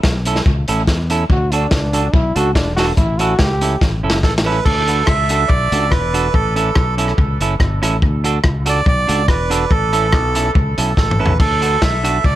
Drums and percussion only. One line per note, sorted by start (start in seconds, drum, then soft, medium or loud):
0.03 kick loud
0.03 snare loud
0.25 closed hi-hat loud
0.35 snare medium
0.46 kick loud
0.68 closed hi-hat medium
0.87 kick loud
0.87 snare loud
1.10 closed hi-hat medium
1.30 kick loud
1.52 closed hi-hat medium
1.71 kick loud
1.71 snare loud
1.93 closed hi-hat medium
2.14 kick loud
2.36 closed hi-hat medium
2.55 kick loud
2.55 snare loud
2.77 snare medium
2.77 open hi-hat medium
2.97 kick loud
2.97 hi-hat pedal medium
3.19 closed hi-hat medium
3.39 kick loud
3.39 snare loud
3.61 closed hi-hat medium
3.81 kick loud
3.81 snare medium
4.10 snare medium
4.23 kick loud
4.23 snare medium
4.38 snare loud
4.66 kick loud
4.66 crash loud
4.88 closed hi-hat medium
5.07 kick loud
5.07 cross-stick loud
5.29 closed hi-hat medium
5.50 kick loud
5.72 closed hi-hat medium
5.92 kick loud
5.92 cross-stick medium
6.14 closed hi-hat medium
6.34 kick loud
6.56 closed hi-hat medium
6.75 kick loud
6.75 cross-stick loud
6.98 closed hi-hat medium
7.08 cross-stick medium
7.18 kick loud
7.41 closed hi-hat medium
7.60 kick loud
7.60 cross-stick medium
7.83 cross-stick medium
7.83 closed hi-hat medium
8.02 kick loud
8.24 closed hi-hat medium
8.44 kick loud
8.44 cross-stick loud
8.66 closed hi-hat loud
8.86 kick loud
9.09 closed hi-hat medium
9.28 kick loud
9.28 cross-stick loud
9.51 closed hi-hat medium
9.71 kick loud
9.93 closed hi-hat medium
10.13 kick loud
10.13 cross-stick loud
10.35 closed hi-hat loud
10.55 kick loud
10.78 closed hi-hat medium
10.97 kick loud
10.97 snare medium
11.11 mid tom medium
11.26 floor tom loud
11.40 kick loud
11.40 crash medium
11.62 closed hi-hat medium
11.82 kick loud
11.82 snare loud
12.05 closed hi-hat loud
12.24 kick loud